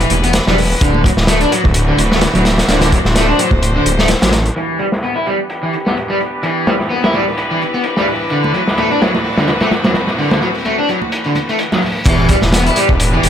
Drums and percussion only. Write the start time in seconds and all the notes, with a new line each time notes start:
0.01 closed hi-hat
0.10 closed hi-hat, high conga
0.24 closed hi-hat
0.33 snare, closed hi-hat
0.47 snare, high conga, low conga
0.58 open hi-hat
0.81 kick, closed hi-hat
0.94 high conga
1.04 kick, closed hi-hat
1.17 snare
1.27 snare, closed hi-hat, high conga
1.41 closed hi-hat
1.52 closed hi-hat
1.64 kick, high conga
1.74 closed hi-hat
1.97 closed hi-hat, high conga
2.12 snare
2.21 snare, closed hi-hat
2.34 closed hi-hat, high conga, low conga
2.45 snare, closed hi-hat
2.58 snare, closed hi-hat
2.69 snare, closed hi-hat
2.81 snare, closed hi-hat, high conga
2.92 kick, closed hi-hat
3.05 snare
3.16 snare, closed hi-hat, high conga
3.39 closed hi-hat
3.51 kick, high conga
3.63 closed hi-hat
3.86 closed hi-hat, high conga
3.99 snare
4.08 snare, closed hi-hat
4.22 snare, closed hi-hat, high conga, low conga
4.32 snare, closed hi-hat
4.46 closed hi-hat
4.56 closed hi-hat
4.79 closed hi-hat
4.92 snare
5.04 closed hi-hat
5.16 closed hi-hat
5.26 closed hi-hat
5.50 closed hi-hat
5.73 closed hi-hat
5.87 snare
5.97 closed hi-hat
6.10 closed hi-hat
6.21 closed hi-hat
6.43 closed hi-hat
6.67 snare, closed hi-hat
6.80 snare
6.90 open hi-hat
7.03 snare, closed hi-hat
7.13 snare
7.28 open hi-hat
7.37 closed hi-hat
7.50 closed hi-hat
7.61 closed hi-hat
7.74 closed hi-hat
7.84 closed hi-hat
7.97 snare
8.08 open hi-hat
8.30 closed hi-hat
8.44 high conga
8.54 closed hi-hat
8.67 snare
8.78 closed hi-hat, high conga
8.91 closed hi-hat
9.02 snare, closed hi-hat
9.15 snare, high conga
9.24 open hi-hat
9.38 snare, closed hi-hat
9.48 snare, closed hi-hat, high conga
9.60 snare, closed hi-hat
9.71 snare, closed hi-hat
9.84 snare, closed hi-hat, high conga, low conga
9.94 snare, closed hi-hat
10.07 snare
10.18 open hi-hat
10.31 snare, closed hi-hat, high conga
10.41 snare
10.54 open hi-hat
10.65 closed hi-hat, high conga
10.89 closed hi-hat
11.02 high conga
11.12 closed hi-hat
11.24 closed hi-hat
11.35 closed hi-hat, high conga
11.49 closed hi-hat
11.59 closed hi-hat
11.72 snare, high conga, low conga
11.82 open hi-hat
12.06 kick, closed hi-hat, crash
12.29 kick, closed hi-hat
12.42 snare
12.53 snare, closed hi-hat
12.66 closed hi-hat
12.76 closed hi-hat
12.89 kick
13.00 closed hi-hat
13.23 closed hi-hat